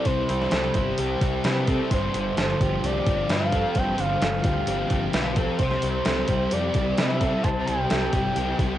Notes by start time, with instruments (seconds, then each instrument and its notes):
Already playing: distorted electric guitar G3 C4 E4, overdriven electric guitar G3 C4 E4 G4
0.05 fingered electric bass C2, overdriven electric guitar C3, distorted electric guitar C3, soft synth lead C5, clean electric guitar C5, kick, open hi-hat
0.29 fingered electric bass C2, distorted electric guitar G3, overdriven electric guitar G3, open hi-hat
0.41 snare
0.51 fingered electric bass C2, distorted electric guitar C3, overdriven electric guitar G3, clean electric guitar A4, snare, open hi-hat
0.74 fingered electric bass G1, distorted electric guitar G3, overdriven electric guitar E4, clean electric guitar G4, kick, open hi-hat
0.98 fingered electric bass C2, distorted electric guitar C4, clean electric guitar G4, overdriven electric guitar G4, open hi-hat
1.21 fingered electric bass C2, distorted electric guitar G3, overdriven electric guitar E4, kick, open hi-hat
1.44 fingered electric bass C3, overdriven electric guitar G3, distorted electric guitar E4, clean electric guitar B4, snare, open hi-hat
1.67 distorted electric guitar C4, overdriven electric guitar C4, clean electric guitar A4, kick, open hi-hat
1.91 fingered electric bass G1, distorted electric guitar G2, overdriven electric guitar G2, clean electric guitar C5, soft synth lead C5, kick, open hi-hat
2.14 fingered electric bass G1, overdriven electric guitar D3, distorted electric guitar D3, open hi-hat
2.36 fingered electric bass G1, distorted electric guitar D3, overdriven electric guitar F3, clean electric guitar A4, soft synth lead C5, snare, open hi-hat
2.61 fingered electric bass G1, distorted electric guitar F3, overdriven electric guitar F4, clean electric guitar G4, kick, open hi-hat
2.83 fingered electric bass C2, distorted electric guitar C4, clean electric guitar G4, overdriven electric guitar G4, soft synth lead D5, open hi-hat
3.07 fingered electric bass G1, distorted electric guitar F3, overdriven electric guitar F4, kick, open hi-hat
3.29 fingered electric bass G2, overdriven electric guitar F3, distorted electric guitar F4, clean electric guitar B4, soft synth lead F5, snare, open hi-hat
3.52 overdriven electric guitar C4, distorted electric guitar C4, clean electric guitar A4, kick, open hi-hat
3.75 fingered electric bass G1, overdriven electric guitar G2, distorted electric guitar G2, clean electric guitar C5, soft synth lead G5, kick, open hi-hat
3.98 fingered electric bass G1, overdriven electric guitar D3, distorted electric guitar D3, soft synth lead F5, open hi-hat
4.21 fingered electric bass G1, distorted electric guitar D3, overdriven electric guitar F3, clean electric guitar A4, snare, open hi-hat
4.44 fingered electric bass D2, distorted electric guitar F3, overdriven electric guitar F4, clean electric guitar G4, kick, open hi-hat
4.67 fingered electric bass G1, distorted electric guitar C4, overdriven electric guitar G4, clean electric guitar G4, open hi-hat
4.90 fingered electric bass G1, distorted electric guitar F3, overdriven electric guitar F4, kick, open hi-hat
5.13 fingered electric bass B1, overdriven electric guitar F3, distorted electric guitar F4, clean electric guitar B4, snare, open hi-hat
5.36 overdriven electric guitar C4, distorted electric guitar C4, clean electric guitar A4, kick, open hi-hat
5.59 fingered electric bass C2, overdriven electric guitar C3, distorted electric guitar C3, clean electric guitar C5, soft synth lead C5, kick, open hi-hat
5.71 snare
5.82 fingered electric bass C2, distorted electric guitar G3, overdriven electric guitar G3, open hi-hat
6.05 fingered electric bass C2, distorted electric guitar C3, overdriven electric guitar G3, clean electric guitar A4, snare, open hi-hat
6.28 fingered electric bass C2, distorted electric guitar G3, overdriven electric guitar E4, clean electric guitar G4, kick, open hi-hat
6.51 fingered electric bass F2, distorted electric guitar C4, clean electric guitar G4, overdriven electric guitar G4, soft synth lead D5, open hi-hat
6.74 fingered electric bass C2, distorted electric guitar G3, overdriven electric guitar E4, kick, open hi-hat
6.98 fingered electric bass C3, overdriven electric guitar G3, distorted electric guitar E4, clean electric guitar B4, soft synth lead E5, snare, open hi-hat
7.21 overdriven electric guitar C4, distorted electric guitar C4, clean electric guitar A4, kick, open hi-hat
7.43 fingered electric bass C2, distorted electric guitar C3, overdriven electric guitar C3, clean electric guitar C5, soft synth lead A5, kick, open hi-hat
7.66 fingered electric bass C2, overdriven electric guitar G3, distorted electric guitar G3, soft synth lead G5, open hi-hat
7.90 fingered electric bass C2, distorted electric guitar C3, overdriven electric guitar G3, clean electric guitar A4, snare, open hi-hat
8.13 fingered electric bass G1, distorted electric guitar G3, overdriven electric guitar E4, clean electric guitar G4, kick, open hi-hat
8.36 fingered electric bass C2, distorted electric guitar C4, clean electric guitar G4, overdriven electric guitar G4, open hi-hat
8.59 fingered electric bass C2, distorted electric guitar G3, overdriven electric guitar E4, kick, open hi-hat